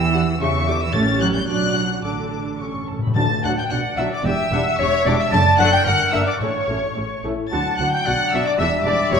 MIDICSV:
0, 0, Header, 1, 11, 480
1, 0, Start_track
1, 0, Key_signature, 2, "major"
1, 0, Tempo, 532860
1, 848, Time_signature, 2, 2, 24, 8
1, 1332, Tempo, 558140
1, 3252, Tempo, 536193
1, 5172, Tempo, 551471
1, 7092, Tempo, 528634
1, 8124, End_track
2, 0, Start_track
2, 0, Title_t, "Violin section"
2, 0, Program_c, 0, 48
2, 0, Note_on_c, 0, 88, 121
2, 365, Note_off_c, 0, 88, 0
2, 371, Note_on_c, 0, 85, 127
2, 604, Note_off_c, 0, 85, 0
2, 612, Note_on_c, 0, 86, 104
2, 730, Note_off_c, 0, 86, 0
2, 736, Note_on_c, 0, 88, 123
2, 840, Note_on_c, 0, 93, 124
2, 852, Note_off_c, 0, 88, 0
2, 1084, Note_off_c, 0, 93, 0
2, 1090, Note_on_c, 0, 90, 117
2, 1138, Note_off_c, 0, 90, 0
2, 1211, Note_on_c, 0, 91, 104
2, 1318, Note_on_c, 0, 90, 126
2, 1330, Note_off_c, 0, 91, 0
2, 1796, Note_off_c, 0, 90, 0
2, 1813, Note_on_c, 0, 86, 81
2, 2286, Note_off_c, 0, 86, 0
2, 2773, Note_on_c, 0, 93, 106
2, 2996, Note_off_c, 0, 93, 0
2, 3016, Note_on_c, 0, 90, 99
2, 3063, Note_off_c, 0, 90, 0
2, 3140, Note_on_c, 0, 91, 94
2, 3186, Note_off_c, 0, 91, 0
2, 3240, Note_on_c, 0, 90, 110
2, 3312, Note_off_c, 0, 90, 0
2, 3490, Note_on_c, 0, 88, 99
2, 3540, Note_off_c, 0, 88, 0
2, 3627, Note_on_c, 0, 86, 106
2, 3733, Note_on_c, 0, 88, 121
2, 3741, Note_off_c, 0, 86, 0
2, 4205, Note_off_c, 0, 88, 0
2, 4214, Note_on_c, 0, 85, 127
2, 4453, Note_off_c, 0, 85, 0
2, 4465, Note_on_c, 0, 86, 110
2, 4579, Note_off_c, 0, 86, 0
2, 4585, Note_on_c, 0, 88, 120
2, 4698, Note_off_c, 0, 88, 0
2, 4703, Note_on_c, 0, 93, 127
2, 4925, Note_on_c, 0, 90, 127
2, 4935, Note_off_c, 0, 93, 0
2, 5045, Note_off_c, 0, 90, 0
2, 5047, Note_on_c, 0, 91, 125
2, 5154, Note_on_c, 0, 90, 127
2, 5169, Note_off_c, 0, 91, 0
2, 5394, Note_on_c, 0, 88, 105
2, 5395, Note_off_c, 0, 90, 0
2, 5518, Note_off_c, 0, 88, 0
2, 5528, Note_on_c, 0, 86, 109
2, 5636, Note_on_c, 0, 85, 95
2, 5647, Note_off_c, 0, 86, 0
2, 6353, Note_off_c, 0, 85, 0
2, 6614, Note_on_c, 0, 93, 110
2, 6836, Note_off_c, 0, 93, 0
2, 6846, Note_on_c, 0, 90, 106
2, 6966, Note_off_c, 0, 90, 0
2, 6974, Note_on_c, 0, 91, 113
2, 7085, Note_on_c, 0, 90, 117
2, 7089, Note_off_c, 0, 91, 0
2, 7331, Note_off_c, 0, 90, 0
2, 7334, Note_on_c, 0, 88, 112
2, 7455, Note_off_c, 0, 88, 0
2, 7459, Note_on_c, 0, 86, 109
2, 7506, Note_off_c, 0, 86, 0
2, 7564, Note_on_c, 0, 88, 111
2, 7799, Note_on_c, 0, 86, 114
2, 7802, Note_off_c, 0, 88, 0
2, 8038, Note_off_c, 0, 86, 0
2, 8041, Note_on_c, 0, 85, 127
2, 8124, Note_off_c, 0, 85, 0
2, 8124, End_track
3, 0, Start_track
3, 0, Title_t, "Violin section"
3, 0, Program_c, 1, 48
3, 0, Note_on_c, 1, 79, 99
3, 121, Note_on_c, 1, 78, 107
3, 125, Note_off_c, 1, 79, 0
3, 193, Note_off_c, 1, 78, 0
3, 367, Note_on_c, 1, 76, 107
3, 837, Note_off_c, 1, 76, 0
3, 840, Note_on_c, 1, 73, 100
3, 1328, Note_off_c, 1, 73, 0
3, 1339, Note_on_c, 1, 74, 91
3, 1568, Note_off_c, 1, 74, 0
3, 1573, Note_on_c, 1, 78, 81
3, 1814, Note_off_c, 1, 78, 0
3, 1821, Note_on_c, 1, 81, 65
3, 2243, Note_off_c, 1, 81, 0
3, 2290, Note_on_c, 1, 85, 69
3, 2518, Note_off_c, 1, 85, 0
3, 2540, Note_on_c, 1, 81, 65
3, 2661, Note_off_c, 1, 81, 0
3, 2667, Note_on_c, 1, 83, 67
3, 2772, Note_on_c, 1, 81, 104
3, 2781, Note_off_c, 1, 83, 0
3, 2995, Note_off_c, 1, 81, 0
3, 3013, Note_on_c, 1, 78, 91
3, 3061, Note_off_c, 1, 78, 0
3, 3129, Note_on_c, 1, 79, 87
3, 3246, Note_off_c, 1, 79, 0
3, 3257, Note_on_c, 1, 78, 95
3, 3494, Note_off_c, 1, 78, 0
3, 3496, Note_on_c, 1, 76, 100
3, 3615, Note_on_c, 1, 74, 91
3, 3617, Note_off_c, 1, 76, 0
3, 3732, Note_on_c, 1, 76, 100
3, 3737, Note_off_c, 1, 74, 0
3, 4214, Note_off_c, 1, 76, 0
3, 4214, Note_on_c, 1, 73, 121
3, 4285, Note_off_c, 1, 73, 0
3, 4451, Note_on_c, 1, 74, 98
3, 4565, Note_on_c, 1, 76, 109
3, 4569, Note_off_c, 1, 74, 0
3, 4682, Note_on_c, 1, 81, 127
3, 4685, Note_off_c, 1, 76, 0
3, 4920, Note_off_c, 1, 81, 0
3, 4920, Note_on_c, 1, 78, 127
3, 5045, Note_off_c, 1, 78, 0
3, 5050, Note_on_c, 1, 79, 113
3, 5098, Note_off_c, 1, 79, 0
3, 5179, Note_on_c, 1, 78, 125
3, 5249, Note_off_c, 1, 78, 0
3, 5397, Note_on_c, 1, 76, 104
3, 5447, Note_off_c, 1, 76, 0
3, 5527, Note_on_c, 1, 74, 92
3, 5576, Note_off_c, 1, 74, 0
3, 5654, Note_on_c, 1, 73, 88
3, 6363, Note_off_c, 1, 73, 0
3, 6617, Note_on_c, 1, 81, 102
3, 6838, Note_off_c, 1, 81, 0
3, 6854, Note_on_c, 1, 78, 99
3, 6970, Note_off_c, 1, 78, 0
3, 6970, Note_on_c, 1, 79, 101
3, 7089, Note_off_c, 1, 79, 0
3, 7094, Note_on_c, 1, 78, 101
3, 7334, Note_on_c, 1, 76, 105
3, 7336, Note_off_c, 1, 78, 0
3, 7451, Note_on_c, 1, 74, 99
3, 7455, Note_off_c, 1, 76, 0
3, 7570, Note_off_c, 1, 74, 0
3, 7579, Note_on_c, 1, 76, 120
3, 7652, Note_off_c, 1, 76, 0
3, 7820, Note_on_c, 1, 74, 108
3, 7893, Note_off_c, 1, 74, 0
3, 8049, Note_on_c, 1, 73, 112
3, 8122, Note_off_c, 1, 73, 0
3, 8124, End_track
4, 0, Start_track
4, 0, Title_t, "Flute"
4, 0, Program_c, 2, 73
4, 2777, Note_on_c, 2, 81, 88
4, 2831, Note_off_c, 2, 81, 0
4, 3009, Note_on_c, 2, 78, 94
4, 3137, Note_on_c, 2, 79, 97
4, 3150, Note_off_c, 2, 78, 0
4, 3250, Note_on_c, 2, 78, 95
4, 3263, Note_off_c, 2, 79, 0
4, 3494, Note_on_c, 2, 76, 97
4, 3508, Note_off_c, 2, 78, 0
4, 3606, Note_off_c, 2, 76, 0
4, 3611, Note_on_c, 2, 74, 83
4, 3665, Note_off_c, 2, 74, 0
4, 3739, Note_on_c, 2, 76, 108
4, 4218, Note_on_c, 2, 73, 126
4, 4231, Note_off_c, 2, 76, 0
4, 4464, Note_on_c, 2, 74, 101
4, 4477, Note_off_c, 2, 73, 0
4, 4575, Note_off_c, 2, 74, 0
4, 4581, Note_on_c, 2, 76, 108
4, 4632, Note_off_c, 2, 76, 0
4, 4702, Note_on_c, 2, 81, 127
4, 4756, Note_off_c, 2, 81, 0
4, 4937, Note_on_c, 2, 78, 123
4, 5058, Note_on_c, 2, 79, 118
4, 5072, Note_off_c, 2, 78, 0
4, 5168, Note_off_c, 2, 79, 0
4, 5173, Note_on_c, 2, 78, 123
4, 5417, Note_on_c, 2, 76, 110
4, 5430, Note_off_c, 2, 78, 0
4, 5525, Note_off_c, 2, 76, 0
4, 5530, Note_on_c, 2, 74, 84
4, 5582, Note_off_c, 2, 74, 0
4, 5662, Note_on_c, 2, 73, 89
4, 6367, Note_off_c, 2, 73, 0
4, 6615, Note_on_c, 2, 81, 100
4, 6859, Note_on_c, 2, 78, 94
4, 6872, Note_off_c, 2, 81, 0
4, 6972, Note_off_c, 2, 78, 0
4, 6977, Note_on_c, 2, 79, 105
4, 7029, Note_off_c, 2, 79, 0
4, 7094, Note_on_c, 2, 78, 105
4, 7148, Note_off_c, 2, 78, 0
4, 7346, Note_on_c, 2, 76, 101
4, 7456, Note_on_c, 2, 74, 103
4, 7469, Note_off_c, 2, 76, 0
4, 7581, Note_on_c, 2, 76, 113
4, 7595, Note_off_c, 2, 74, 0
4, 7826, Note_on_c, 2, 74, 113
4, 7840, Note_off_c, 2, 76, 0
4, 8057, Note_off_c, 2, 74, 0
4, 8065, Note_on_c, 2, 73, 119
4, 8124, Note_off_c, 2, 73, 0
4, 8124, End_track
5, 0, Start_track
5, 0, Title_t, "Trumpet section"
5, 0, Program_c, 3, 61
5, 2783, Note_on_c, 3, 81, 92
5, 3001, Note_off_c, 3, 81, 0
5, 3015, Note_on_c, 3, 78, 90
5, 3133, Note_off_c, 3, 78, 0
5, 3134, Note_on_c, 3, 79, 96
5, 3251, Note_off_c, 3, 79, 0
5, 3252, Note_on_c, 3, 78, 97
5, 3496, Note_off_c, 3, 78, 0
5, 3496, Note_on_c, 3, 76, 87
5, 3618, Note_off_c, 3, 76, 0
5, 3619, Note_on_c, 3, 74, 87
5, 3737, Note_off_c, 3, 74, 0
5, 3744, Note_on_c, 3, 76, 103
5, 4220, Note_off_c, 3, 76, 0
5, 4222, Note_on_c, 3, 73, 122
5, 4456, Note_on_c, 3, 74, 91
5, 4457, Note_off_c, 3, 73, 0
5, 4509, Note_off_c, 3, 74, 0
5, 4581, Note_on_c, 3, 76, 109
5, 4633, Note_off_c, 3, 76, 0
5, 4696, Note_on_c, 3, 81, 120
5, 4802, Note_off_c, 3, 81, 0
5, 4936, Note_on_c, 3, 78, 117
5, 5050, Note_off_c, 3, 78, 0
5, 5053, Note_on_c, 3, 79, 127
5, 5170, Note_off_c, 3, 79, 0
5, 5177, Note_on_c, 3, 78, 127
5, 5406, Note_off_c, 3, 78, 0
5, 5408, Note_on_c, 3, 76, 96
5, 5526, Note_off_c, 3, 76, 0
5, 5534, Note_on_c, 3, 74, 89
5, 5587, Note_off_c, 3, 74, 0
5, 5657, Note_on_c, 3, 73, 94
5, 6364, Note_off_c, 3, 73, 0
5, 6625, Note_on_c, 3, 81, 102
5, 6842, Note_off_c, 3, 81, 0
5, 6858, Note_on_c, 3, 78, 95
5, 6972, Note_off_c, 3, 78, 0
5, 6983, Note_on_c, 3, 79, 107
5, 7096, Note_off_c, 3, 79, 0
5, 7102, Note_on_c, 3, 78, 114
5, 7340, Note_off_c, 3, 78, 0
5, 7344, Note_on_c, 3, 76, 103
5, 7459, Note_off_c, 3, 76, 0
5, 7465, Note_on_c, 3, 74, 91
5, 7579, Note_off_c, 3, 74, 0
5, 7579, Note_on_c, 3, 76, 112
5, 7685, Note_off_c, 3, 76, 0
5, 7812, Note_on_c, 3, 74, 116
5, 8045, Note_off_c, 3, 74, 0
5, 8055, Note_on_c, 3, 73, 126
5, 8124, Note_off_c, 3, 73, 0
5, 8124, End_track
6, 0, Start_track
6, 0, Title_t, "Clarinet"
6, 0, Program_c, 4, 71
6, 3248, Note_on_c, 4, 74, 92
6, 3736, Note_on_c, 4, 79, 107
6, 3749, Note_off_c, 4, 74, 0
6, 3977, Note_off_c, 4, 79, 0
6, 3984, Note_on_c, 4, 78, 106
6, 4205, Note_off_c, 4, 78, 0
6, 4211, Note_on_c, 4, 76, 122
6, 4686, Note_on_c, 4, 74, 127
6, 4700, Note_off_c, 4, 76, 0
6, 5159, Note_on_c, 4, 70, 112
6, 5172, Note_off_c, 4, 74, 0
6, 5643, Note_off_c, 4, 70, 0
6, 5651, Note_on_c, 4, 73, 93
6, 6361, Note_off_c, 4, 73, 0
6, 6609, Note_on_c, 4, 78, 112
6, 7087, Note_on_c, 4, 74, 103
6, 7100, Note_off_c, 4, 78, 0
6, 7563, Note_on_c, 4, 76, 127
6, 7577, Note_off_c, 4, 74, 0
6, 8124, Note_off_c, 4, 76, 0
6, 8124, End_track
7, 0, Start_track
7, 0, Title_t, "Viola section"
7, 0, Program_c, 5, 48
7, 121, Note_on_c, 5, 62, 84
7, 123, Note_on_c, 5, 67, 79
7, 193, Note_off_c, 5, 62, 0
7, 195, Note_off_c, 5, 67, 0
7, 366, Note_on_c, 5, 62, 78
7, 368, Note_on_c, 5, 67, 82
7, 438, Note_off_c, 5, 62, 0
7, 440, Note_off_c, 5, 67, 0
7, 609, Note_on_c, 5, 62, 86
7, 613, Note_on_c, 5, 67, 89
7, 682, Note_off_c, 5, 62, 0
7, 685, Note_off_c, 5, 67, 0
7, 844, Note_on_c, 5, 61, 97
7, 845, Note_on_c, 5, 67, 91
7, 1296, Note_off_c, 5, 61, 0
7, 1296, Note_off_c, 5, 67, 0
7, 1338, Note_on_c, 5, 62, 82
7, 1341, Note_on_c, 5, 66, 83
7, 1800, Note_off_c, 5, 62, 0
7, 1808, Note_on_c, 5, 69, 60
7, 1810, Note_on_c, 5, 62, 58
7, 1816, Note_off_c, 5, 66, 0
7, 2283, Note_off_c, 5, 69, 0
7, 2285, Note_off_c, 5, 62, 0
7, 2304, Note_on_c, 5, 69, 49
7, 2307, Note_on_c, 5, 61, 51
7, 2600, Note_off_c, 5, 69, 0
7, 2607, Note_off_c, 5, 61, 0
7, 2781, Note_on_c, 5, 62, 74
7, 2781, Note_on_c, 5, 66, 73
7, 2850, Note_off_c, 5, 62, 0
7, 2850, Note_off_c, 5, 66, 0
7, 3020, Note_on_c, 5, 62, 67
7, 3021, Note_on_c, 5, 66, 64
7, 3089, Note_off_c, 5, 62, 0
7, 3090, Note_off_c, 5, 66, 0
7, 3242, Note_on_c, 5, 66, 63
7, 3248, Note_on_c, 5, 62, 70
7, 3313, Note_off_c, 5, 66, 0
7, 3319, Note_off_c, 5, 62, 0
7, 3492, Note_on_c, 5, 62, 71
7, 3494, Note_on_c, 5, 66, 74
7, 3563, Note_off_c, 5, 62, 0
7, 3566, Note_off_c, 5, 66, 0
7, 3744, Note_on_c, 5, 62, 86
7, 3744, Note_on_c, 5, 67, 83
7, 3815, Note_off_c, 5, 62, 0
7, 3816, Note_off_c, 5, 67, 0
7, 3983, Note_on_c, 5, 67, 80
7, 3985, Note_on_c, 5, 62, 80
7, 4054, Note_off_c, 5, 67, 0
7, 4056, Note_off_c, 5, 62, 0
7, 4221, Note_on_c, 5, 67, 82
7, 4228, Note_on_c, 5, 62, 85
7, 4293, Note_off_c, 5, 67, 0
7, 4299, Note_off_c, 5, 62, 0
7, 4457, Note_on_c, 5, 67, 88
7, 4458, Note_on_c, 5, 62, 88
7, 4529, Note_off_c, 5, 62, 0
7, 4529, Note_off_c, 5, 67, 0
7, 4684, Note_on_c, 5, 62, 102
7, 4685, Note_on_c, 5, 69, 104
7, 4756, Note_off_c, 5, 62, 0
7, 4757, Note_off_c, 5, 69, 0
7, 4937, Note_on_c, 5, 62, 97
7, 4937, Note_on_c, 5, 69, 89
7, 5009, Note_off_c, 5, 62, 0
7, 5009, Note_off_c, 5, 69, 0
7, 5173, Note_on_c, 5, 70, 85
7, 5175, Note_on_c, 5, 62, 78
7, 5242, Note_off_c, 5, 70, 0
7, 5245, Note_off_c, 5, 62, 0
7, 5409, Note_on_c, 5, 62, 79
7, 5410, Note_on_c, 5, 70, 84
7, 5479, Note_off_c, 5, 62, 0
7, 5479, Note_off_c, 5, 70, 0
7, 5659, Note_on_c, 5, 61, 76
7, 5662, Note_on_c, 5, 69, 75
7, 5729, Note_off_c, 5, 61, 0
7, 5731, Note_off_c, 5, 69, 0
7, 5900, Note_on_c, 5, 61, 69
7, 5902, Note_on_c, 5, 69, 67
7, 5969, Note_off_c, 5, 61, 0
7, 5971, Note_off_c, 5, 69, 0
7, 6137, Note_on_c, 5, 61, 59
7, 6138, Note_on_c, 5, 69, 58
7, 6206, Note_off_c, 5, 61, 0
7, 6207, Note_off_c, 5, 69, 0
7, 6377, Note_on_c, 5, 69, 68
7, 6384, Note_on_c, 5, 61, 63
7, 6446, Note_off_c, 5, 69, 0
7, 6453, Note_off_c, 5, 61, 0
7, 6617, Note_on_c, 5, 62, 81
7, 6619, Note_on_c, 5, 66, 77
7, 6686, Note_off_c, 5, 62, 0
7, 6689, Note_off_c, 5, 66, 0
7, 6860, Note_on_c, 5, 66, 77
7, 6868, Note_on_c, 5, 62, 73
7, 6929, Note_off_c, 5, 66, 0
7, 6937, Note_off_c, 5, 62, 0
7, 7090, Note_on_c, 5, 62, 74
7, 7092, Note_on_c, 5, 66, 79
7, 7162, Note_off_c, 5, 62, 0
7, 7164, Note_off_c, 5, 66, 0
7, 7335, Note_on_c, 5, 66, 83
7, 7337, Note_on_c, 5, 62, 88
7, 7408, Note_off_c, 5, 66, 0
7, 7409, Note_off_c, 5, 62, 0
7, 7573, Note_on_c, 5, 67, 95
7, 7581, Note_on_c, 5, 62, 92
7, 7646, Note_off_c, 5, 67, 0
7, 7653, Note_off_c, 5, 62, 0
7, 7806, Note_on_c, 5, 67, 85
7, 7809, Note_on_c, 5, 62, 88
7, 7879, Note_off_c, 5, 67, 0
7, 7882, Note_off_c, 5, 62, 0
7, 8051, Note_on_c, 5, 67, 88
7, 8054, Note_on_c, 5, 62, 88
7, 8124, Note_off_c, 5, 62, 0
7, 8124, Note_off_c, 5, 67, 0
7, 8124, End_track
8, 0, Start_track
8, 0, Title_t, "French horn section"
8, 0, Program_c, 6, 60
8, 3014, Note_on_c, 6, 54, 78
8, 3020, Note_on_c, 6, 62, 85
8, 3097, Note_off_c, 6, 54, 0
8, 3101, Note_off_c, 6, 62, 0
8, 3493, Note_on_c, 6, 62, 80
8, 3499, Note_on_c, 6, 54, 84
8, 3579, Note_off_c, 6, 62, 0
8, 3583, Note_off_c, 6, 54, 0
8, 3975, Note_on_c, 6, 55, 90
8, 3979, Note_on_c, 6, 62, 91
8, 4060, Note_off_c, 6, 55, 0
8, 4062, Note_off_c, 6, 62, 0
8, 4464, Note_on_c, 6, 55, 100
8, 4464, Note_on_c, 6, 62, 113
8, 4543, Note_off_c, 6, 62, 0
8, 4544, Note_off_c, 6, 55, 0
8, 4922, Note_on_c, 6, 62, 116
8, 4933, Note_on_c, 6, 57, 113
8, 5008, Note_off_c, 6, 62, 0
8, 5016, Note_off_c, 6, 57, 0
8, 5403, Note_on_c, 6, 58, 92
8, 5403, Note_on_c, 6, 62, 93
8, 5488, Note_off_c, 6, 62, 0
8, 5489, Note_off_c, 6, 58, 0
8, 5883, Note_on_c, 6, 57, 74
8, 5884, Note_on_c, 6, 64, 79
8, 5970, Note_off_c, 6, 57, 0
8, 5971, Note_off_c, 6, 64, 0
8, 6378, Note_on_c, 6, 57, 74
8, 6380, Note_on_c, 6, 64, 76
8, 6461, Note_off_c, 6, 57, 0
8, 6463, Note_off_c, 6, 64, 0
8, 6609, Note_on_c, 6, 54, 88
8, 6612, Note_on_c, 6, 62, 92
8, 7534, Note_off_c, 6, 54, 0
8, 7584, Note_on_c, 6, 55, 99
8, 8124, Note_off_c, 6, 55, 0
8, 8124, Note_off_c, 6, 62, 0
8, 8124, End_track
9, 0, Start_track
9, 0, Title_t, "Cello section"
9, 0, Program_c, 7, 48
9, 0, Note_on_c, 7, 52, 113
9, 355, Note_off_c, 7, 52, 0
9, 356, Note_on_c, 7, 49, 99
9, 597, Note_off_c, 7, 49, 0
9, 603, Note_on_c, 7, 50, 89
9, 725, Note_off_c, 7, 50, 0
9, 727, Note_on_c, 7, 52, 98
9, 845, Note_off_c, 7, 52, 0
9, 845, Note_on_c, 7, 57, 114
9, 917, Note_off_c, 7, 57, 0
9, 1084, Note_on_c, 7, 54, 102
9, 1205, Note_off_c, 7, 54, 0
9, 1209, Note_on_c, 7, 55, 80
9, 1329, Note_off_c, 7, 55, 0
9, 1331, Note_on_c, 7, 54, 89
9, 1802, Note_off_c, 7, 54, 0
9, 1810, Note_on_c, 7, 50, 69
9, 2284, Note_off_c, 7, 50, 0
9, 2783, Note_on_c, 7, 38, 85
9, 2852, Note_off_c, 7, 38, 0
9, 3013, Note_on_c, 7, 38, 75
9, 3082, Note_off_c, 7, 38, 0
9, 3247, Note_on_c, 7, 47, 75
9, 3319, Note_off_c, 7, 47, 0
9, 3487, Note_on_c, 7, 47, 79
9, 3558, Note_off_c, 7, 47, 0
9, 3729, Note_on_c, 7, 40, 100
9, 3801, Note_off_c, 7, 40, 0
9, 3969, Note_on_c, 7, 40, 94
9, 4041, Note_off_c, 7, 40, 0
9, 4207, Note_on_c, 7, 40, 85
9, 4279, Note_off_c, 7, 40, 0
9, 4452, Note_on_c, 7, 40, 100
9, 4524, Note_off_c, 7, 40, 0
9, 4687, Note_on_c, 7, 42, 115
9, 4759, Note_off_c, 7, 42, 0
9, 4935, Note_on_c, 7, 42, 99
9, 5007, Note_off_c, 7, 42, 0
9, 5174, Note_on_c, 7, 43, 86
9, 5244, Note_off_c, 7, 43, 0
9, 5405, Note_on_c, 7, 43, 87
9, 5475, Note_off_c, 7, 43, 0
9, 5653, Note_on_c, 7, 45, 84
9, 5722, Note_off_c, 7, 45, 0
9, 5893, Note_on_c, 7, 45, 72
9, 5962, Note_off_c, 7, 45, 0
9, 6134, Note_on_c, 7, 45, 67
9, 6204, Note_off_c, 7, 45, 0
9, 6374, Note_on_c, 7, 45, 62
9, 6444, Note_off_c, 7, 45, 0
9, 6627, Note_on_c, 7, 50, 96
9, 6697, Note_off_c, 7, 50, 0
9, 6865, Note_on_c, 7, 50, 78
9, 6935, Note_off_c, 7, 50, 0
9, 7097, Note_on_c, 7, 47, 81
9, 7170, Note_off_c, 7, 47, 0
9, 7345, Note_on_c, 7, 47, 95
9, 7417, Note_off_c, 7, 47, 0
9, 7587, Note_on_c, 7, 40, 107
9, 7660, Note_off_c, 7, 40, 0
9, 7828, Note_on_c, 7, 40, 94
9, 7901, Note_off_c, 7, 40, 0
9, 8070, Note_on_c, 7, 40, 97
9, 8124, Note_off_c, 7, 40, 0
9, 8124, End_track
10, 0, Start_track
10, 0, Title_t, "Timpani"
10, 0, Program_c, 8, 47
10, 840, Note_on_c, 8, 45, 123
10, 1294, Note_off_c, 8, 45, 0
10, 2298, Note_on_c, 8, 45, 39
10, 2353, Note_off_c, 8, 45, 0
10, 2363, Note_on_c, 8, 45, 42
10, 2415, Note_off_c, 8, 45, 0
10, 2426, Note_on_c, 8, 45, 55
10, 2488, Note_off_c, 8, 45, 0
10, 2499, Note_on_c, 8, 45, 64
10, 2561, Note_off_c, 8, 45, 0
10, 2571, Note_on_c, 8, 45, 64
10, 2621, Note_off_c, 8, 45, 0
10, 2631, Note_on_c, 8, 45, 81
10, 2689, Note_off_c, 8, 45, 0
10, 2700, Note_on_c, 8, 45, 100
10, 2761, Note_off_c, 8, 45, 0
10, 2774, Note_on_c, 8, 50, 121
10, 3215, Note_off_c, 8, 50, 0
10, 8124, End_track
11, 0, Start_track
11, 0, Title_t, "Double bass section"
11, 0, Program_c, 10, 48
11, 0, Note_on_c, 10, 40, 93
11, 315, Note_off_c, 10, 40, 0
11, 374, Note_on_c, 10, 40, 107
11, 793, Note_off_c, 10, 40, 0
11, 855, Note_on_c, 10, 33, 99
11, 1302, Note_off_c, 10, 33, 0
11, 1337, Note_on_c, 10, 35, 86
11, 1809, Note_on_c, 10, 33, 66
11, 1815, Note_off_c, 10, 35, 0
11, 2584, Note_off_c, 10, 33, 0
11, 2775, Note_on_c, 10, 38, 88
11, 2844, Note_off_c, 10, 38, 0
11, 3018, Note_on_c, 10, 38, 76
11, 3087, Note_off_c, 10, 38, 0
11, 3249, Note_on_c, 10, 35, 73
11, 3320, Note_off_c, 10, 35, 0
11, 3485, Note_on_c, 10, 35, 79
11, 3556, Note_off_c, 10, 35, 0
11, 3728, Note_on_c, 10, 28, 99
11, 3799, Note_off_c, 10, 28, 0
11, 3975, Note_on_c, 10, 28, 90
11, 4047, Note_off_c, 10, 28, 0
11, 4222, Note_on_c, 10, 28, 96
11, 4294, Note_off_c, 10, 28, 0
11, 4457, Note_on_c, 10, 28, 106
11, 4529, Note_off_c, 10, 28, 0
11, 4697, Note_on_c, 10, 30, 121
11, 4769, Note_off_c, 10, 30, 0
11, 4933, Note_on_c, 10, 30, 106
11, 5005, Note_off_c, 10, 30, 0
11, 5170, Note_on_c, 10, 31, 98
11, 5240, Note_off_c, 10, 31, 0
11, 5411, Note_on_c, 10, 31, 85
11, 5481, Note_off_c, 10, 31, 0
11, 5652, Note_on_c, 10, 33, 93
11, 5721, Note_off_c, 10, 33, 0
11, 5898, Note_on_c, 10, 33, 81
11, 5967, Note_off_c, 10, 33, 0
11, 6140, Note_on_c, 10, 33, 71
11, 6210, Note_off_c, 10, 33, 0
11, 6372, Note_on_c, 10, 33, 72
11, 6442, Note_off_c, 10, 33, 0
11, 6622, Note_on_c, 10, 38, 91
11, 6691, Note_off_c, 10, 38, 0
11, 6856, Note_on_c, 10, 38, 87
11, 6926, Note_off_c, 10, 38, 0
11, 7094, Note_on_c, 10, 35, 82
11, 7167, Note_off_c, 10, 35, 0
11, 7337, Note_on_c, 10, 35, 93
11, 7410, Note_off_c, 10, 35, 0
11, 7572, Note_on_c, 10, 28, 111
11, 7645, Note_off_c, 10, 28, 0
11, 7812, Note_on_c, 10, 28, 98
11, 7884, Note_off_c, 10, 28, 0
11, 8051, Note_on_c, 10, 28, 105
11, 8124, Note_off_c, 10, 28, 0
11, 8124, End_track
0, 0, End_of_file